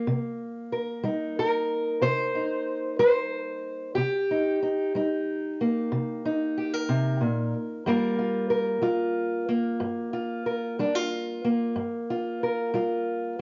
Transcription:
Already playing: A#3 A#4
0.07 C3
0.72 A#4
1.04 G3 D#4
1.39 A#4
2.02 C3 C5
2.35 D#4
2.99 G3 C5
3.95 C3 G4
4.31 D#4
4.62 D#4
4.95 G3 D#4
5.61 A#3
5.92 C3
6.25 D#4
6.57 G4
6.73 A#4
6.89 C3
7.21 A#2
7.86 G2 G3 A#3 F4 A#4
8.19 F4
8.50 A#4
8.82 G3 F4
9.49 A#3
9.80 G2
10.13 F4
10.46 A#4
10.79 G3 D4
10.95 F4
11.45 A#3
11.76 G2
12.10 F4
12.43 A#4
12.74 G3 F4

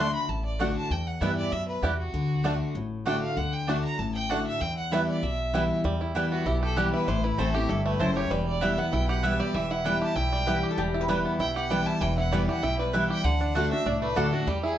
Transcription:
Already playing: D2
0.00 D3 A3 D4 F#4 C6
0.15 B5
0.29 A1 A2 A5
0.45 D5
0.59 D3 A3 D4 F#4 D5 F#5
0.76 A5
0.90 E2 G5
1.07 F#5
1.21 G2 E3 G3 B3 E4 B4 E5 G5
1.37 D5
1.52 F#2 B2 E5
1.68 B4
1.82 E2 C3 G3 B3 E4 G4 B4 G5
1.98 F#4
2.13 D2 D3
2.44 D3 A3 D4 F#4 D5 F#5
2.75 A1 A2
3.05 D3 A3 D4 F#4 D5 F#5 G5
3.22 F5
3.37 D2 D3 F#5
3.53 G5
3.67 D3 A3 D4 F#4 D5 F#5 A5
3.84 A#5
3.99 A1 A2 A5
4.15 G5
4.29 D3 A3 D4 F#4 D5 F#5
4.47 E5
4.61 E2 G5
4.77 F#5
4.91 E3 G3 B3 E4 B4 E5 G5
5.09 D5
5.23 B1 B2 E5
5.53 E3 G3 B3 E4 B4 G5
5.84 E2 G3
6.01 E4
6.15 E3 G3 B3 E4 B4 G5
6.31 B3 F#4
6.46 B1 B2 E4 G4
6.62 G4 A4
6.76 E3 G3 B3 E4 G4 B4 G5
6.93 E4 B4
7.08 A1 A2 E3 C5
7.24 E4 B4
7.38 A1 E3 A3 C4 E4 A4 C5 A5
7.54 C4 E4 G4
7.69 G1 G2 E4 A4
7.85 A3 B4
7.99 F#1 F#2 C4 E4 C5 A5
8.16 G4 C#5
8.30 E1 E2 G3 B4
8.46 D5
8.61 E3 G3 B3 E4 B4 E5 G5
8.78 B3 E4 F#5
8.93 B1 B2 E4 G5
9.09 G4 F#5
9.23 E3 G3 B3 E4 B4 E5 G5
9.40 G4 D5
9.54 E1 E2 E3 E5
9.71 E4 F#5
9.84 E3 G3 B3 E4 B4 G5
10.02 G4 A5
10.16 B1 B2 E4 G5
10.33 G3
10.46 E3 G3 B3 E4 G4 B4 G5
10.63 G4
10.71 A4
10.77 E1 E2 G3 G4
10.94 E4
11.01 B4
11.08 E3 G3 B3 E4 B4 G5
11.25 B3
11.39 B1 B2 E4 G5
11.56 G4 F#5
11.70 E3 G3 B3 E4 B4 G5
11.86 E4 A5
12.01 E1 E2 E3 G5
12.18 E4 F#5
12.32 E3 G3 B3 E4 B4 D5 G5
12.48 B3 E4 G4 F#5
12.63 B1 B2 E4 G5
12.79 G3 B4
12.93 E3 G3 B3 E4 B4 E5 G5
13.10 G4 G5
13.24 D2 D3 F#5
13.41 D4
13.55 D3 A3 D4 F#4 D5 F#5
13.71 D4 F#4 E5
13.86 C2 A2 D4 D5
14.02 A3 B4
14.15 D2 D3 A3 D4 F#4 A4 D5 F#5
14.32 D4 F#4
14.47 E2 G3 G4
14.63 E4 G#4

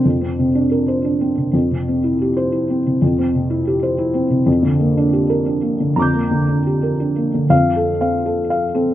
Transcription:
Already playing: C3
0.05 F2
0.21 C4
0.39 C3
0.55 D4
0.72 A#4
0.88 C5
1.04 D4
1.21 C4
1.38 C3
1.53 F2
1.71 C3
1.88 C4
2.04 E4
2.21 G4
2.37 C5
2.52 E4
2.70 C4
2.86 C3
3.02 F2
3.18 C4
3.35 C3
3.50 E4
3.67 G4
3.83 C5
3.98 E4
4.14 C4
4.31 C3
4.46 F2
4.63 D3
4.80 A#3
4.97 D4
5.13 G4
5.30 A#4
5.46 D4
5.62 A#3
5.80 D3
5.96 F2 A#5 D6
6.02 G6
6.14 A#3
6.31 D3
6.49 D4
6.67 G4
6.83 A#4
7.00 D4
7.16 A#3
7.34 D3
7.50 F2 F5
7.76 A4
8.01 C4 F5
8.26 A4
8.50 F5
8.75 C4 A4

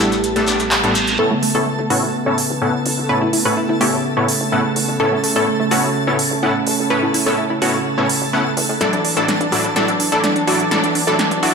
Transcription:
Already playing: A1 G3 A3 B3 G4 A4 A5
0.00 A2 G3 A3 B3 D4 E4 A4
0.12 closed hi-hat, shekere
0.24 closed hi-hat, reverse cymbal, shekere
0.36 A2 G3 A3 B3 D4 A4, closed hi-hat
0.47 A2 G3 A3 B3 D4 D5, closed hi-hat, shekere
0.59 closed hi-hat, shekere
0.71 clap, closed hi-hat, shekere
0.83 A2 G3 A3 B3 D4 A4, closed hi-hat
0.95 closed hi-hat, shekere
1.07 closed hi-hat, shekere
1.19 A2 C#3 A3 B3 C#4 E4 A4 C#5 A5
1.31 A1 A3
1.43 A3, open hi-hat
1.55 A1 A2 B3 C#4 E4 A4 C#5
1.66 A3
1.79 A1 A3
1.90 A1 A2 B3 C#4 E4 F#4 A4 C#5, open hi-hat
2.03 A1
2.26 A1 A2 B3 C#4 E4 A4 C#5
2.38 open hi-hat
2.50 A1
2.62 A2 B3 C#4 E4 A4 F#5
2.86 A1, open hi-hat
2.98 A1
3.09 A2 B3 C#4 E4 A4 B4 C#5
3.22 A1 E4
3.33 E4, open hi-hat
3.45 A1 A2 B3 C#4 E4 A4 B4 C#5
3.57 E4
3.69 A1 E4
3.81 A1 A2 B3 C#4 E4 G4 A4 C#5, open hi-hat
3.93 A1
4.17 A1 A2 B3 C#4 E4 A4 C#5
4.28 open hi-hat
4.41 A1
4.52 A2 B3 C#4 E4 A4 F#5
4.76 A1, open hi-hat
4.88 A1
5.00 A2 B3 C#4 E4 A4 C#5
5.12 A1 A3
5.24 A3, open hi-hat
5.36 A1 A2 B3 C#4 E4 A4 C#5
5.47 A3
5.60 A1 A3
5.71 A1 A2 B3 C#4 E4 F#4 A4 C#5, open hi-hat
5.84 A1
6.07 A1 A2 B3 C#4 E4 A4 C#5
6.19 open hi-hat
6.31 A1
6.43 A2 B3 C#4 E4 A4 F#5
6.67 A1, open hi-hat
6.79 A1
6.90 A2 B3 C#4 E4 A4 B4 C#5
7.03 A1 E4
7.14 E4, open hi-hat
7.26 A1 A2 B3 C#4 E4 A4 C#5
7.38 E4
7.50 A1 E4
7.62 A1 A2 B3 C#4 E4 F#4 A4 C#5, open hi-hat
7.74 A1
7.98 A1 A2 B3 C#4 E4 A4 C#5
8.09 open hi-hat
8.22 A1
8.33 A2 B3 C#4 E4 A4 F#5
8.57 E2, open hi-hat
8.69 A2
8.81 A2 E3 F#3 D4 E4 A4 D5, snare, closed hi-hat
8.93 A1 D4, closed hi-hat
9.05 D4, open hi-hat
9.17 A1 A2 F#3 D4 E4 A4 D5, closed hi-hat
9.28 D4, snare, closed hi-hat
9.41 A1 D4, closed hi-hat
9.52 A1 A2 F#3 D4 E4 F#4 A4 D5, open hi-hat
9.64 A1, closed hi-hat
9.76 A2 F#3 D4 E4 A4 D5, snare, closed hi-hat
9.88 A1 D4, closed hi-hat
10.00 D4, open hi-hat
10.12 A1 A2 F#3 D4 E4 A4 D5, closed hi-hat
10.24 D4, snare, closed hi-hat
10.36 D4, closed hi-hat
10.47 A1 A2 F#3 D4 E4 F#4 A4 D5, open hi-hat
10.60 A1, closed hi-hat
10.71 A2 F#3 D4 E4 A4 D5, snare, closed hi-hat
10.83 A1 D4, closed hi-hat
10.95 D4, open hi-hat
11.07 A1 A2 F#3 D4 E4 A4 D5, closed hi-hat
11.19 D4, snare, closed hi-hat
11.31 A1 D4, closed hi-hat
11.43 A1 A2 F#3 D4 E4 F#4 A4 D5, open hi-hat

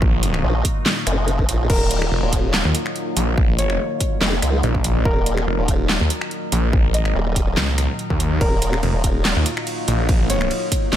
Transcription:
Already playing: A#1 A#2 D#3 F#3 D#4 F4
0.02 kick
0.23 closed hi-hat
0.34 finger snap
0.44 A#1
0.65 kick, closed hi-hat
0.86 snare, clap
1.07 F#1, finger snap, closed hi-hat
1.28 closed hi-hat
1.39 kick
1.49 A#1, closed hi-hat
1.70 D#1 F4 A#4, kick, crash
1.91 closed hi-hat
2.02 finger snap
2.12 F1
2.23 D#1
2.33 kick, closed hi-hat
2.54 snare, clap
2.65 D#2
2.75 closed hi-hat
2.86 finger snap
2.96 closed hi-hat
3.17 A#1, closed hi-hat
3.38 kick
3.59 C#5, closed hi-hat
3.70 finger snap
4.01 kick, closed hi-hat
4.21 F1, snare, clap
4.42 C#2, finger snap, closed hi-hat
4.63 A#1, closed hi-hat
4.75 kick
4.84 closed hi-hat
5.05 D#1 A#4, kick
5.26 closed hi-hat
5.38 finger snap
5.47 F1
5.59 D#1
5.68 kick, closed hi-hat
5.89 snare, clap
6.00 D#2
6.10 closed hi-hat
6.21 finger snap
6.31 closed hi-hat
6.52 A#1, closed hi-hat
6.73 kick
6.94 A1 D#5, closed hi-hat
7.05 finger snap
7.15 D#1
7.36 kick, closed hi-hat
7.57 C#2, snare, clap
7.78 finger snap, closed hi-hat
7.99 closed hi-hat
8.10 D#2, kick
8.20 closed hi-hat
8.41 D#1 F4 A#4, kick, ride
8.62 closed hi-hat
8.73 finger snap
8.83 F1, ride
8.94 D#1
9.04 kick, closed hi-hat
9.25 snare, clap, ride
9.36 D#2
9.46 closed hi-hat
9.57 finger snap
9.67 closed hi-hat, ride
9.88 A#1, closed hi-hat
10.09 kick, ride
10.30 C#5, closed hi-hat
10.41 finger snap
10.51 ride
10.72 kick, closed hi-hat
10.93 F1, snare, clap, ride

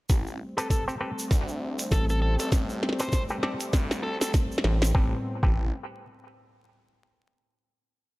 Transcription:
0.09 A1 G3 A3 C4, kick, snare, closed hi-hat, shaker
0.27 shaker
0.58 C4 G4 A4 B4, closed hi-hat, shaker
0.70 A4, kick, snare, closed hi-hat, shaker
0.88 C4 G4 A4 C5, shaker
1.01 C4 G4 A4 B4, cross-stick
1.19 shaker
1.31 D2, kick, cross-stick, snare, closed hi-hat, shaker
1.48 shaker
1.79 closed hi-hat, shaker
1.91 A1 A4, kick, snare, closed hi-hat, shaker
2.09 A4, shaker
2.22 A4
2.39 A1 A4, closed hi-hat, shaker
2.52 kick, snare, closed hi-hat, shaker
2.70 shaker
2.83 snare
2.89 snare
2.93 snare
3.00 C4 G4 A4 B4 C5, snare, closed hi-hat, shaker
3.03 snare
3.09 kick, snare, shaker
3.13 snare, closed hi-hat
3.29 C4 G4 A4 B4, shaker
3.43 C4 G4 A4 D5, snare
3.60 closed hi-hat, shaker
3.73 D2, kick, snare, closed hi-hat, shaker
3.91 snare, shaker
4.03 A4
4.21 A4, snare, closed hi-hat, shaker
4.34 kick, snare, closed hi-hat, shaker
4.52 shaker
4.58 snare
4.64 A1, snare
4.82 snare, closed hi-hat, shaker
4.94 A1 A2 G3 B3 C4 G4 A4 B4, kick
5.43 A1 C4 G4 A4 B4, kick

